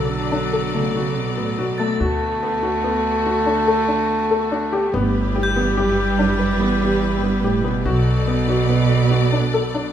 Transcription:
Already playing: B1 C#3 F#3 B3 A4 D5
0.11 D3
0.32 D4
0.53 A4
0.74 C#3 A3
0.95 C#3 F#4
1.17 B2
1.37 A2 B3
1.59 B2 F#4
1.78 A3 A6
2.00 D2 D3 A3 F#4
2.43 B3
2.63 F#4
2.84 B3
3.26 F#4
3.46 D4
3.67 A4
3.88 D4
4.31 A4
4.52 D4
4.73 G4
4.92 G1 D2 G3 B3 E4 G4 B4
5.36 G4
5.43 G6
5.56 E2 B3
5.75 F#2 G4
5.98 G2
6.18 F#2 D4
6.39 B4
6.59 E2 B3
6.81 E2 G4
7.22 G2 B3
7.41 A2 G4
7.61 B2 B3
7.85 B1 F#3 B3 F#4 A4 D5
8.27 B3
8.48 F#4
8.69 B3
9.11 F#4
9.32 D4
9.54 A4
9.74 D4

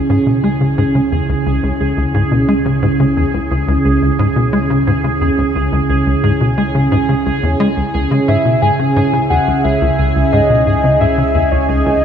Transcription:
Already playing: C#2 C#3 C#4 E4 G#4 G#5
0.10 G#2
0.26 B2
0.44 G#3
0.61 C#3
0.78 G#2
0.95 C#3
1.12 E2
1.29 C#2
1.46 C#2
1.63 C#2
1.80 C#2
1.97 C#2
2.14 G#2
2.31 B2
2.48 G#3
2.65 C#3
2.82 G#2
3.00 C#3
3.17 E2
3.34 C#2
3.51 C#2
3.68 C#2
3.85 C#2
4.02 C#2
4.19 G#2
4.36 B2
4.53 G#3
4.70 C#3
4.87 G#2
5.04 C#3
5.21 E2
5.38 C#2
5.55 C#2
5.72 C#2
5.89 C#2
6.06 C#2
6.23 G#2
6.41 B2
6.58 G#3
6.75 C#3
6.92 G#2
7.09 C#3
7.26 C#2
7.43 E2
7.60 G#3
7.77 C#2
7.94 C#2
8.11 C#3
8.28 C#2 G#2 E5
8.45 B2
8.62 G#2 G#5
8.79 C#3
8.96 G#2
9.13 C#3
9.30 E2 F#5
9.47 C#2
9.64 C#2 E5
9.81 C#2
9.99 C#2
10.16 C#2
10.32 G#2 D#5
10.50 B2
10.67 G#2
10.84 C#3
11.01 G#2 E5
11.18 C#3
11.35 E2
11.52 C#2 C#5
11.69 C#2 D#5
11.86 C#2

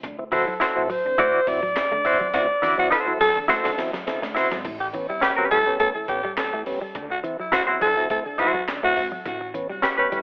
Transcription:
0.03 D2 D3, kick, closed hi-hat
0.19 C4 E4, muted clean electric guitar stroke
0.32 E3 F#3 C4 E4 F#4 A4 C5, kick, open hi-hat
0.48 F#3, muted upright bass stroke
0.60 E4 F#4 A4 C5, snare, clap, closed hi-hat
0.76 A1 F#3 C4 E4
0.90 F#3 C5, open hi-hat
1.05 C2 D3
1.18 A3 E4 F#4 D5, kick, closed hi-hat
1.34 muted clean electric guitar stroke, muted upright bass stroke
1.47 A1 F#3 C4 E4 D5, kick, open hi-hat
1.63 F#3
1.76 C4 E4, snare, clap, closed hi-hat
1.92 D3 A3
2.05 F#3 C4 E4 F#4 C5, muted clean electric guitar stroke, open hi-hat
2.21 C#2 F#3
2.33 D2 F#3 C4 E4 F#4 D5, kick, snare, closed hi-hat
2.49 muted clean electric guitar stroke
2.62 D3 E3 E4 F#4 D5, snare, open hi-hat
2.78 E2 F#3 C4 E4 F#4
2.90 E4 F#4 A4 C5, snare, closed hi-hat
3.06 C2 F#3 C4 E4
3.21 F#3 A4, snare, open hi-hat
3.36 E2 D3
3.48 A3 C4 E4 F#4 C5, kick, snare, closed hi-hat
3.64 D2 D3, muted clean electric guitar stroke, snare
3.77 E2 F#3 C4 E4, snare, open hi-hat
3.93 D2 F#3, snare
4.07 D3 C4 E4, snare, closed hi-hat
4.22 D2 D3 A3, snare
4.35 C4 E4 F#4 C5, muted clean electric guitar stroke, snare, open hi-hat
4.51 G#1 F#3, snare
4.65 A1 A2 E3, kick, closed hi-hat, crash
4.80 G4, muted clean electric guitar stroke
4.93 E3 B3 C#4, closed hi-hat
5.09 C2 G3 E4
5.21 C#4 G4 B4, snare, clap, closed hi-hat
5.36 G3 B3 C#4 G4 B4, muted upright bass stroke
5.51 C#2 A2 E3 G3 A4, kick, closed hi-hat
5.66 G3 B3 C#4
5.80 A3 B3 C#4 A4, kick, closed hi-hat
5.95 A2 E3, muted upright bass stroke, muted clean electric guitar stroke
6.08 A1 B3 C#4 G4, kick, closed hi-hat
6.25 G3
6.37 C2 B3 C#4 A4, snare, clap, closed hi-hat
6.53 A2 E3 A3
6.66 C#2 G3 B3 C#4, muted clean electric guitar stroke, open hi-hat
6.81 G3
6.95 D2 D3, kick, closed hi-hat
7.10 F#4, muted clean electric guitar stroke
7.23 E3 C4 E4, closed hi-hat
7.39 F#3 E4, muted upright bass stroke
7.52 E4 F#4 C5, snare, clap, closed hi-hat
7.67 F#3 C4 E4 F#4 C5, muted upright bass stroke
7.81 D2 D3 F#3 A4, kick, closed hi-hat
7.97 F#3 C4 E4
8.10 A3 C4 E4 A4, kick, closed hi-hat
8.26 D3, muted clean electric guitar stroke, muted upright bass stroke
8.38 C2 C4 E4 F#4 C5, kick, closed hi-hat
8.54 F#3
8.68 D2 D3, snare, clap, closed hi-hat
8.83 F#3 A3 C4 E4 F#4
8.96 G#1 C4 E4, muted clean electric guitar stroke, kick, open hi-hat
9.12 F#3
9.25 A1 A2 E3, kick, closed hi-hat
9.41 muted clean electric guitar stroke
9.54 E3 B3 C#4, closed hi-hat
9.70 C2 G3
9.82 C#4 G4 B4, snare, clap, closed hi-hat
9.98 G3 B3 C#4 G4 B4, muted upright bass stroke
10.12 C#2 A2 E3 G3, kick, closed hi-hat

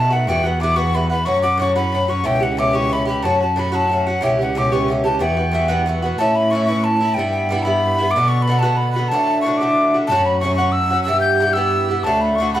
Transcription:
Already playing: B2 D#3 A5
0.00 A3
0.10 D#3 A3 F#4 F#5
0.27 E2 G2 E3 B3 F#4 G5
0.43 E3 B3 F#4 F#5
0.60 G2 E3 B3 F#4 D6
0.76 G2 E3 B3 F#4 C#6
0.93 G2 E3 B3 F#4 B5
1.10 E3 B3 F#4 B5
1.25 F#2 A2 F#3 C#4 F#4 C#6
1.42 C#4 F#4 D6
1.47 F#3
1.58 A2 F#3 C#4 C#6
1.62 F#4
1.76 A2 F#3 C#4 F#4 B5
1.92 A2 F#3 C#4 F#4
2.08 F#3 C#4 F#4 C#6
2.24 C#2 B2 E3 C#4 G4 G5
2.40 E3 C#4 G4 F#5
2.57 B2 E3 C#4 G4 D6
2.73 B2 E3 C#4 G4 C#6
2.90 B2 E3 C#4 G4 B5
3.05 E3 C#4 G4 B5
3.22 F#2 A2 F#3 C#4 F#4 A5
3.40 F#3 C#4 F#4 A5
3.56 A2 F#3 C#4 F#4 B5
3.72 A2 F#3 C#4 F#4 A5
3.89 A2 F#3 C#4 F#4
4.07 F#3 C#4 F#4 F#5
4.21 C#2 B2 E3 C#4 G4 G5
4.39 E3 C#4 G4 F#5
4.55 B2 E3 C#4 G4 D6
4.72 B2 E3 C#4 G4 C#6
4.88 B2 E3 C#4 G4
5.04 E3 C#4 G4 A5
5.19 E2 G2 E3 B3 F#4 G5
5.37 E3 B3 F#4
5.52 G2 E3 B3 F#4
5.68 G2 E3 B3 F#4
5.86 G2 E3 B3 F#4
6.02 E3 B3 F#4
6.18 A2 E3 C#4 E4 A5
6.35 B5
6.51 A2 E3 C#4 C#6
6.55 E4
6.65 C#4 E4 C#6
6.69 A2 E3
6.84 A5
7.01 E3 C#4 E4
7.14 G2 G3 G5
7.19 B3 E4
7.31 G5
7.49 G2 G3 B3 E4
7.63 B3 E4 B5
7.67 G2 G3
7.99 G3 B3 E4
8.11 B2 D6
8.16 B2 D3 B3 F#4
8.28 C#6
8.42 B5
8.47 B2 D3 B3 F#4
8.59 F#4 A5
8.64 B2 D3 B3
8.77 B5
8.92 F#4 B5
8.98 D3 B3
9.08 A2 D3 A5
9.13 A3 F#4
9.41 A2 C#6
9.46 D3 A3 F#4
9.57 F#4 D6
9.62 A2 D3 A3
9.94 D3 A3 F#4
10.07 F#2 A2 F#3 A5
10.12 C#4 F#4
10.25 B5
10.40 A2 F#3 C#4 C#6
10.45 F#4
10.55 C#4 F#4 C#6
10.60 A2 F#3
10.72 E6
10.90 F#3 C#4 F#4
11.03 G2 E6
11.08 G2 E3 B3 G4
11.21 G6
11.40 G2 E3 B3 G4
11.53 E3 B3 G4 E6
11.58 G2
11.88 E3 B3 G4
12.04 D2 A2 D3 A3 F#4 A5
12.21 B5
12.36 A2 C#6
12.40 D3 A3 F#4
12.54 A2 D3 A3 F#4 B5

